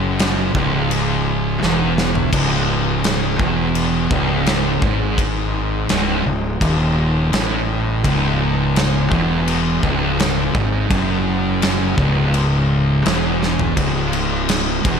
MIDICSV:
0, 0, Header, 1, 4, 480
1, 0, Start_track
1, 0, Key_signature, 4, "minor"
1, 0, Tempo, 715137
1, 1564, Time_signature, 4, 2, 24, 8
1, 10066, End_track
2, 0, Start_track
2, 0, Title_t, "Distorted electric guitar"
2, 0, Program_c, 0, 30
2, 0, Note_on_c, 0, 42, 113
2, 358, Note_off_c, 0, 42, 0
2, 362, Note_on_c, 0, 37, 105
2, 1075, Note_off_c, 0, 37, 0
2, 1078, Note_on_c, 0, 40, 102
2, 1553, Note_off_c, 0, 40, 0
2, 1559, Note_on_c, 0, 37, 109
2, 2273, Note_off_c, 0, 37, 0
2, 2282, Note_on_c, 0, 40, 106
2, 2754, Note_off_c, 0, 40, 0
2, 2758, Note_on_c, 0, 37, 93
2, 3232, Note_off_c, 0, 37, 0
2, 3241, Note_on_c, 0, 44, 103
2, 3953, Note_off_c, 0, 44, 0
2, 3959, Note_on_c, 0, 37, 113
2, 4192, Note_off_c, 0, 37, 0
2, 4201, Note_on_c, 0, 37, 75
2, 4392, Note_off_c, 0, 37, 0
2, 4436, Note_on_c, 0, 39, 113
2, 4910, Note_off_c, 0, 39, 0
2, 4914, Note_on_c, 0, 45, 110
2, 5389, Note_off_c, 0, 45, 0
2, 5396, Note_on_c, 0, 37, 105
2, 6110, Note_off_c, 0, 37, 0
2, 6114, Note_on_c, 0, 40, 110
2, 6589, Note_off_c, 0, 40, 0
2, 6595, Note_on_c, 0, 37, 101
2, 7070, Note_off_c, 0, 37, 0
2, 7077, Note_on_c, 0, 44, 106
2, 7311, Note_off_c, 0, 44, 0
2, 7318, Note_on_c, 0, 42, 102
2, 8033, Note_off_c, 0, 42, 0
2, 8037, Note_on_c, 0, 37, 106
2, 8754, Note_off_c, 0, 37, 0
2, 8760, Note_on_c, 0, 40, 108
2, 9236, Note_off_c, 0, 40, 0
2, 9242, Note_on_c, 0, 37, 102
2, 9961, Note_off_c, 0, 37, 0
2, 9969, Note_on_c, 0, 40, 106
2, 10066, Note_off_c, 0, 40, 0
2, 10066, End_track
3, 0, Start_track
3, 0, Title_t, "Fingered electric bass"
3, 0, Program_c, 1, 33
3, 0, Note_on_c, 1, 30, 98
3, 342, Note_off_c, 1, 30, 0
3, 368, Note_on_c, 1, 25, 97
3, 1059, Note_off_c, 1, 25, 0
3, 1088, Note_on_c, 1, 28, 100
3, 1539, Note_off_c, 1, 28, 0
3, 1562, Note_on_c, 1, 25, 100
3, 2254, Note_off_c, 1, 25, 0
3, 2280, Note_on_c, 1, 28, 95
3, 2733, Note_off_c, 1, 28, 0
3, 2760, Note_on_c, 1, 25, 91
3, 3213, Note_off_c, 1, 25, 0
3, 3239, Note_on_c, 1, 32, 107
3, 3932, Note_off_c, 1, 32, 0
3, 3965, Note_on_c, 1, 25, 101
3, 4185, Note_off_c, 1, 25, 0
3, 4196, Note_on_c, 1, 25, 87
3, 4421, Note_off_c, 1, 25, 0
3, 4439, Note_on_c, 1, 27, 107
3, 4892, Note_off_c, 1, 27, 0
3, 4920, Note_on_c, 1, 33, 103
3, 5372, Note_off_c, 1, 33, 0
3, 5400, Note_on_c, 1, 25, 98
3, 6093, Note_off_c, 1, 25, 0
3, 6121, Note_on_c, 1, 28, 102
3, 6573, Note_off_c, 1, 28, 0
3, 6601, Note_on_c, 1, 25, 96
3, 7053, Note_off_c, 1, 25, 0
3, 7079, Note_on_c, 1, 32, 105
3, 7303, Note_off_c, 1, 32, 0
3, 7320, Note_on_c, 1, 30, 105
3, 8014, Note_off_c, 1, 30, 0
3, 8043, Note_on_c, 1, 25, 88
3, 8737, Note_off_c, 1, 25, 0
3, 8765, Note_on_c, 1, 28, 98
3, 9219, Note_off_c, 1, 28, 0
3, 9241, Note_on_c, 1, 25, 95
3, 9940, Note_off_c, 1, 25, 0
3, 9967, Note_on_c, 1, 28, 91
3, 10066, Note_off_c, 1, 28, 0
3, 10066, End_track
4, 0, Start_track
4, 0, Title_t, "Drums"
4, 129, Note_on_c, 9, 49, 67
4, 137, Note_on_c, 9, 38, 126
4, 197, Note_off_c, 9, 49, 0
4, 204, Note_off_c, 9, 38, 0
4, 368, Note_on_c, 9, 36, 120
4, 436, Note_off_c, 9, 36, 0
4, 610, Note_on_c, 9, 49, 60
4, 677, Note_off_c, 9, 49, 0
4, 1091, Note_on_c, 9, 38, 72
4, 1158, Note_off_c, 9, 38, 0
4, 1330, Note_on_c, 9, 38, 99
4, 1397, Note_off_c, 9, 38, 0
4, 1445, Note_on_c, 9, 43, 90
4, 1513, Note_off_c, 9, 43, 0
4, 1562, Note_on_c, 9, 36, 114
4, 1562, Note_on_c, 9, 49, 100
4, 1629, Note_off_c, 9, 36, 0
4, 1629, Note_off_c, 9, 49, 0
4, 2041, Note_on_c, 9, 49, 67
4, 2048, Note_on_c, 9, 38, 127
4, 2108, Note_off_c, 9, 49, 0
4, 2115, Note_off_c, 9, 38, 0
4, 2279, Note_on_c, 9, 36, 107
4, 2346, Note_off_c, 9, 36, 0
4, 2518, Note_on_c, 9, 49, 65
4, 2585, Note_off_c, 9, 49, 0
4, 2757, Note_on_c, 9, 36, 116
4, 2824, Note_off_c, 9, 36, 0
4, 2996, Note_on_c, 9, 49, 68
4, 3004, Note_on_c, 9, 38, 119
4, 3063, Note_off_c, 9, 49, 0
4, 3071, Note_off_c, 9, 38, 0
4, 3236, Note_on_c, 9, 36, 110
4, 3303, Note_off_c, 9, 36, 0
4, 3477, Note_on_c, 9, 36, 105
4, 3481, Note_on_c, 9, 49, 70
4, 3544, Note_off_c, 9, 36, 0
4, 3548, Note_off_c, 9, 49, 0
4, 3954, Note_on_c, 9, 49, 64
4, 3961, Note_on_c, 9, 38, 119
4, 4021, Note_off_c, 9, 49, 0
4, 4028, Note_off_c, 9, 38, 0
4, 4438, Note_on_c, 9, 36, 96
4, 4441, Note_on_c, 9, 49, 61
4, 4505, Note_off_c, 9, 36, 0
4, 4509, Note_off_c, 9, 49, 0
4, 4919, Note_on_c, 9, 49, 64
4, 4926, Note_on_c, 9, 38, 109
4, 4986, Note_off_c, 9, 49, 0
4, 4993, Note_off_c, 9, 38, 0
4, 5399, Note_on_c, 9, 36, 105
4, 5403, Note_on_c, 9, 49, 65
4, 5467, Note_off_c, 9, 36, 0
4, 5470, Note_off_c, 9, 49, 0
4, 5881, Note_on_c, 9, 49, 72
4, 5888, Note_on_c, 9, 38, 116
4, 5948, Note_off_c, 9, 49, 0
4, 5955, Note_off_c, 9, 38, 0
4, 6119, Note_on_c, 9, 36, 110
4, 6186, Note_off_c, 9, 36, 0
4, 6360, Note_on_c, 9, 49, 67
4, 6427, Note_off_c, 9, 49, 0
4, 6599, Note_on_c, 9, 36, 101
4, 6666, Note_off_c, 9, 36, 0
4, 6843, Note_on_c, 9, 49, 65
4, 6850, Note_on_c, 9, 38, 121
4, 6910, Note_off_c, 9, 49, 0
4, 6917, Note_off_c, 9, 38, 0
4, 7080, Note_on_c, 9, 36, 109
4, 7147, Note_off_c, 9, 36, 0
4, 7320, Note_on_c, 9, 36, 116
4, 7321, Note_on_c, 9, 49, 65
4, 7387, Note_off_c, 9, 36, 0
4, 7388, Note_off_c, 9, 49, 0
4, 7800, Note_on_c, 9, 49, 73
4, 7808, Note_on_c, 9, 38, 124
4, 7867, Note_off_c, 9, 49, 0
4, 7875, Note_off_c, 9, 38, 0
4, 8040, Note_on_c, 9, 36, 112
4, 8107, Note_off_c, 9, 36, 0
4, 8282, Note_on_c, 9, 49, 62
4, 8349, Note_off_c, 9, 49, 0
4, 8763, Note_on_c, 9, 49, 63
4, 8771, Note_on_c, 9, 38, 125
4, 8830, Note_off_c, 9, 49, 0
4, 8838, Note_off_c, 9, 38, 0
4, 9012, Note_on_c, 9, 38, 72
4, 9079, Note_off_c, 9, 38, 0
4, 9125, Note_on_c, 9, 43, 103
4, 9192, Note_off_c, 9, 43, 0
4, 9242, Note_on_c, 9, 49, 83
4, 9243, Note_on_c, 9, 36, 106
4, 9309, Note_off_c, 9, 49, 0
4, 9310, Note_off_c, 9, 36, 0
4, 9483, Note_on_c, 9, 49, 66
4, 9550, Note_off_c, 9, 49, 0
4, 9723, Note_on_c, 9, 49, 91
4, 9731, Note_on_c, 9, 38, 121
4, 9790, Note_off_c, 9, 49, 0
4, 9798, Note_off_c, 9, 38, 0
4, 9967, Note_on_c, 9, 36, 120
4, 9967, Note_on_c, 9, 49, 62
4, 10034, Note_off_c, 9, 36, 0
4, 10034, Note_off_c, 9, 49, 0
4, 10066, End_track
0, 0, End_of_file